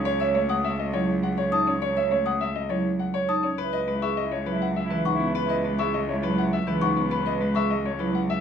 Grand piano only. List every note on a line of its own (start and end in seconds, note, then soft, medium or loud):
0.05 0.24 C#5 medium
0.20 0.39 E5 medium
0.35 0.54 C#5 medium
0.49 0.69 F#5 medium
0.64 0.83 E5 medium
0.79 0.98 D#5 medium
0.94 1.13 C#5 medium
1.23 1.42 F#5 medium
1.38 1.57 C#5 medium
1.53 1.72 A5 medium
1.67 1.80 C#5 medium
1.82 2.01 C#5 medium
1.97 2.16 E5 medium
2.11 2.30 C#5 medium
2.26 2.45 F#5 medium
2.41 2.60 E5 medium
2.55 2.74 D#5 medium
2.70 2.89 C#5 medium
2.99 3.19 F#5 soft
3.14 3.33 C#5 medium
3.29 3.48 A5 soft
3.43 3.63 C#5 soft
3.58 3.77 B4 medium
3.73 3.92 D#5 medium
3.88 4.07 B4 medium
4.02 4.21 E5 medium
4.17 4.36 D#5 medium
4.31 4.51 C#5 medium
4.46 4.66 B4 medium
4.62 4.80 F#5 medium
4.76 4.95 E5 soft
4.91 5.10 B4 medium
5.06 5.25 F#5 medium
5.20 5.33 B4 medium
5.35 5.54 B4 medium
5.50 5.69 D#5 medium
5.65 5.83 B4 medium
5.79 5.98 E5 medium
5.94 6.13 D#5 medium
6.09 6.27 C#5 soft
6.23 6.42 B4 medium
6.38 6.57 F#5 medium
6.53 6.72 E5 medium
6.68 6.86 B4 medium
6.82 7.01 F#5 medium
6.96 7.10 B4 medium
7.11 7.30 B4 medium
7.27 7.45 D#5 medium
7.41 7.60 B4 medium
7.56 7.75 E5 medium
7.70 7.89 D#5 medium
7.85 8.04 C#5 medium
8.00 8.19 B4 medium
8.15 8.33 F#5 medium
8.30 8.40 E5 medium